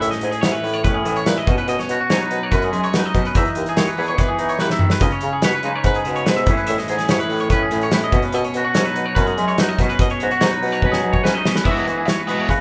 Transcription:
Already playing: A2 C#4 C#5
0.01 A2 E5, closed hi-hat
0.11 D#5, snare, closed hi-hat
0.21 G#2 G#4, closed hi-hat
0.31 G#4, closed hi-hat
0.41 G#2 E3 E4 C#5, snare, closed hi-hat
0.52 B4, closed hi-hat
0.63 A2, open hi-hat
0.74 C#5, closed hi-hat
0.84 A2 C#4 B4, kick, closed hi-hat
0.94 G#4
1.05 A2 E3, closed hi-hat
1.16 C#5, closed hi-hat
1.26 A#2 E4 B4, snare, closed hi-hat
1.36 D#5, closed hi-hat
1.47 B2 C#4, kick, closed hi-hat
1.58 B4, closed hi-hat
1.67 B2 D#5, closed hi-hat
1.79 C#5, snare, closed hi-hat
1.89 B2 F#4, closed hi-hat
2.00 F#4
2.10 G#2 F#3 D#4 C#5, snare, closed hi-hat
2.20 B4, closed hi-hat
2.31 B2, closed hi-hat
2.43 C#5
2.51 F#2 C#4 B4, kick, closed hi-hat
2.62 G#4, closed hi-hat
2.72 F#2 G#3, closed hi-hat
2.83 C#5, closed hi-hat
2.93 B2 D#4 B4, snare, closed hi-hat
3.04 D#5, closed hi-hat
3.14 B2 C#4, kick, closed hi-hat
3.25 B4, closed hi-hat
3.35 E2 E3 D#4 E5, kick, closed hi-hat
3.45 D#5, closed hi-hat
3.55 D#2, closed hi-hat
3.66 G#4, closed hi-hat
3.76 D#2 G#4 C#5, snare, closed hi-hat
3.87 B4, closed hi-hat
3.97 E2 B3 G#4, open hi-hat
4.07 C#5, closed hi-hat
4.18 E3 B4, kick, closed hi-hat
4.28 G#4
4.39 E3 D#4, closed hi-hat
4.49 C#5, closed hi-hat
4.59 D#2 E3 B4, snare
4.70 E5, snare
4.79 D#3, mid tom
4.90 B4, snare
5.00 C#2 C#3 C#4 D#5, kick, closed hi-hat
5.11 C#5, closed hi-hat
5.21 C#3, closed hi-hat
5.33 G#4
5.42 B2 B4 C#5, snare, closed hi-hat
5.52 B4, closed hi-hat
5.63 C#3 G#3 D#4, closed hi-hat
5.75 C#5
5.84 G#2 B4, kick, closed hi-hat
5.94 G#4, closed hi-hat
6.05 B2 C#3, closed hi-hat
6.15 C#5, closed hi-hat
6.26 G#2 B2 B4, snare, closed hi-hat
6.37 E5, closed hi-hat
6.46 A2 E3 C#4, kick, closed hi-hat
6.50 E4 G#4
6.57 B4, closed hi-hat
6.67 A2 E5, closed hi-hat
6.78 D#5, snare, closed hi-hat
6.88 G#2 G#4, closed hi-hat
6.98 G#4, snare, closed hi-hat
7.08 G#2 E3 E4 C#5, snare, closed hi-hat
7.19 B4, closed hi-hat
7.29 A2, open hi-hat
7.40 C#5, closed hi-hat
7.50 A2 C#4 B4, kick, closed hi-hat
7.63 G#4
7.71 A2, closed hi-hat
7.81 C#5, closed hi-hat
7.91 A2 E4 B4, snare, closed hi-hat
8.02 D#5, closed hi-hat
8.12 B2 C#4, kick, closed hi-hat
8.22 B4, closed hi-hat
8.32 B2 D#5, closed hi-hat
8.44 C#5, closed hi-hat
8.54 B2 F#4, closed hi-hat
8.64 F#4
8.74 G#2 F#3 C#4 C#5, snare, closed hi-hat
8.85 D#4 B4, closed hi-hat
8.96 B2, closed hi-hat
9.06 C#5
9.15 F#2 C#4 B4, kick, closed hi-hat
9.26 G#4, closed hi-hat
9.38 F#2 G#3, closed hi-hat
9.48 C#5, closed hi-hat
9.58 B2 D#4 B4, snare, closed hi-hat
9.68 D#5, closed hi-hat
9.79 B2 C#4, kick, snare, closed hi-hat
9.89 B4, closed hi-hat
9.99 B2 D#5, kick, closed hi-hat
10.10 C#5, closed hi-hat
10.20 G#2 F#4, closed hi-hat
10.31 F#4, closed hi-hat
10.41 G#2 F#3 D#4 C#5, snare, closed hi-hat
10.51 B4, closed hi-hat
10.62 B2, open hi-hat
10.72 C#5, closed hi-hat
10.82 B2 C#4 B4, kick
10.92 G#4, snare
11.03 F#2 B2
11.13 C#5, kick
11.24 G#2 C#4 B4, snare
11.35 D#4 D#5
11.45 B2 C#4, snare
11.56 B4, snare
11.64 E3 G#3 B3 E4 G#4 E5, kick, crash
11.68 B3 E4 F#4
11.77 D#5, closed hi-hat
11.86 E3, muted overdriven electric guitar stroke, closed hi-hat
11.90 F#4
11.98 G#4
12.05 C#5, muted overdriven electric guitar stroke, snare, closed hi-hat
12.18 B4, closed hi-hat
12.27 B2 G#3 B3 E4 F#4 G#4, closed hi-hat
12.40 C#5
12.49 C#3 F#4 B4, muted overdriven electric guitar stroke, kick, closed hi-hat

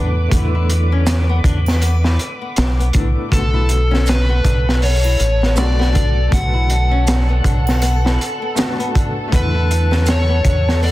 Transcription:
Already playing: E2 A3 B3 D4 E4 B4 D6
0.29 E2 A3 B3, kick, closed hi-hat
0.34 D3 E4
0.55 E4
0.69 closed hi-hat
0.92 C#4
1.07 snare, closed hi-hat, maracas
1.29 B3
1.44 E2 D4, kick, closed hi-hat
1.66 snare, triangle
1.81 B3, closed hi-hat, triangle
2.04 E4, snare
2.19 closed hi-hat
2.42 B3
2.56 B1, snare, closed hi-hat, maracas
2.79 B3, closed hi-hat
2.93 A3 B3 D4, kick, closed hi-hat
2.97 E4
3.29 B1 A3 B3 A4, kick
3.33 D3 F#4 A4, closed hi-hat
3.54 E4
3.69 closed hi-hat
3.91 C#4, snare
4.06 B4, snare, closed hi-hat, maracas
4.29 B3
4.44 B1 D4, kick, closed hi-hat
4.69 snare
4.82 B3 C#5, open hi-hat
5.04 E4, triangle
5.20 A1, closed hi-hat
5.42 B3, snare
5.55 B1 A3 B3 D4 D5, snare, closed hi-hat, maracas
5.59 F#4
5.79 B3, snare
5.94 D4, kick, closed hi-hat
6.28 A3 B3
6.32 B1 D3 F#5, kick, closed hi-hat
6.36 F#4
6.54 E4
6.70 closed hi-hat
6.91 C#4
7.07 snare, closed hi-hat, maracas
7.29 B3
7.44 B1 D4, kick, closed hi-hat
7.67 snare, triangle
7.82 B3, closed hi-hat, triangle
8.05 E4, snare
8.21 closed hi-hat
8.42 B3
8.55 A3 B3 D4 F#4, snare, closed hi-hat, maracas
8.79 B3, closed hi-hat
8.95 D4, kick, closed hi-hat
9.28 A3 B3
9.32 E2 D3 B3 E4 B4, kick, closed hi-hat
9.54 E4
9.71 closed hi-hat
9.91 C#4, snare
10.06 snare, closed hi-hat, maracas
10.10 C#5
10.29 B3
10.44 E2 D4, kick, closed hi-hat
10.69 snare
10.82 B3 D5, open hi-hat

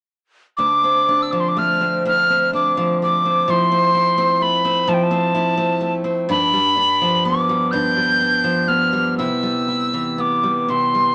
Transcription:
0.57 D2 D4 D6
0.84 C4
1.09 D4
1.22 E6
1.31 F3 D6
1.40 C6
1.49 D6
1.57 A3 F6
1.81 C4
2.05 D2 D4 F6
2.30 C4
2.53 D4 D6
2.77 F3
3.02 A3 D6
3.25 C4
3.48 F3 E4 C6
3.72 C4
3.95 E4
4.18 C4
4.41 A3 B5
4.65 C4
4.87 F3 E4 A5
4.94 G5
5.03 A5
5.11 C4
5.35 E4
5.57 C4
5.81 A3
6.04 C4
6.29 G2 D4 B5
6.53 G3
6.77 D4
7.01 F3
7.25 B3 D6
7.49 G3
7.71 G2 D4 G6
7.97 G3
8.20 D4
8.44 F3
8.68 B3 F6
8.93 G3
9.18 C3 E4 E6
9.43 G3
9.68 E4
9.94 E3
10.18 B3 D6
10.43 G3
10.68 C3 E4 C6
10.94 G3

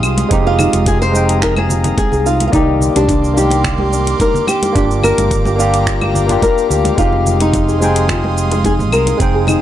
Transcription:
Already playing: G#3 C4 D#4 G4 F5 G5 C6 D#6
0.03 C2 F4, cabasa, claves
0.17 closed hi-hat, muted conga, high conga, cabasa
0.28 F1 G#3 C4 D#4 A#5, kick, closed hi-hat, cabasa
0.34 G4
0.45 F4 G#4
0.59 D#4, muted conga, low conga, cabasa, claves
0.73 F1, closed hi-hat, high conga, cabasa
0.86 F4 G#4, kick, closed hi-hat, cabasa
1.02 C5, cabasa
1.12 G#3 C4 D#4, muted conga, cabasa
1.17 G5
1.29 G#4, closed hi-hat, cabasa
1.42 D#4 A#4, finger snap, kick, closed hi-hat, cabasa
1.57 G#4, muted conga, high conga, claves
1.69 F4, low conga, cabasa
1.84 closed hi-hat, low conga, cabasa
1.97 G#4, kick, closed hi-hat, high conga, cabasa
2.12 C2 G#4, muted conga, cabasa
2.26 D#4 F4, cabasa
2.40 closed hi-hat, high conga, cabasa
2.48 A#3 F4
2.52 C2 D#3 D#4 G4 A#4 D5 C6 D6, kick, closed hi-hat, muted conga, cabasa
2.81 low conga, cabasa
2.95 C2 D4 G4, closed hi-hat, high conga, cabasa
3.08 D4, kick, closed hi-hat, muted conga, cabasa
3.24 cabasa
3.34 A#3 D4 D#4 G4, high conga, cabasa
3.39 G4
3.50 closed hi-hat, muted conga, cabasa
3.64 finger snap, kick, closed hi-hat, low conga, cabasa
3.78 G4, high conga
3.92 D4, cabasa
4.07 closed hi-hat, muted conga, cabasa
4.20 D#4 A#4, kick, closed hi-hat, high conga, cabasa
4.34 low conga, cabasa
4.47 G4, muted conga, cabasa, claves
4.62 G4, closed hi-hat, high conga, cabasa
4.73 G1 A#3 D4 F4 G4 F5 A#5, kick, closed hi-hat, cabasa
4.78 G4
4.91 cabasa
5.03 F4 A#4, muted conga, low conga, cabasa, claves
5.18 G1, closed hi-hat, high conga, cabasa
5.31 kick, closed hi-hat, cabasa
5.45 G4, muted conga, cabasa
5.56 A#3 D4 F4, cabasa
5.62 G4
5.74 closed hi-hat, cabasa
5.87 F4, finger snap, kick, closed hi-hat, cabasa
6.01 muted conga, high conga, claves
6.14 D5, low conga, cabasa
6.27 A#3 D4 F4 A#4, closed hi-hat, low conga, cabasa
6.32 G4
6.42 G4 A#4, kick, closed hi-hat, muted conga, high conga, cabasa
6.58 cabasa
6.70 D2 G4 A#4, cabasa
6.84 D4, closed hi-hat, high conga, cabasa
6.95 F1 G#3 C4 D#4 F4 C6 D#6, kick, closed hi-hat, cabasa
7.01 G4
7.13 muted conga
7.26 F4, low conga, cabasa
7.40 D#4, closed hi-hat, high conga, cabasa
7.54 kick, closed hi-hat, muted conga, cabasa
7.68 G#4, cabasa
7.79 G#3 C4 D#4 G#4, high conga, cabasa
7.84 G5
7.96 closed hi-hat, cabasa
8.09 F4, finger snap, kick, closed hi-hat, muted conga, low conga, cabasa
8.24 high conga
8.38 cabasa
8.51 G#4, closed hi-hat, muted conga, cabasa
8.64 D#4 G#4, kick, closed hi-hat, high conga, cabasa
8.79 low conga, cabasa
8.92 C2 F4 A#4, cabasa, claves
9.07 closed hi-hat, muted conga, high conga, cabasa
9.17 F1 G#3 C4 D#4 G#4 A#5, kick, closed hi-hat, cabasa
9.23 G5
9.34 G#4
9.47 D#4, muted conga, low conga, cabasa, claves

